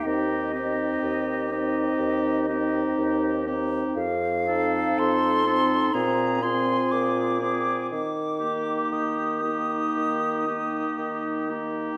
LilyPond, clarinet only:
\new Staff \with { instrumentName = "Clarinet" } { \time 4/4 \key ees \major \tempo 4 = 61 ees'8 ees'4 ees'4 ees'4 ees'8 | r8 ees'4 ees'8 f'8 f'4 f'8 | r8 ees'4 ees'4 ees'4 ees'8 | }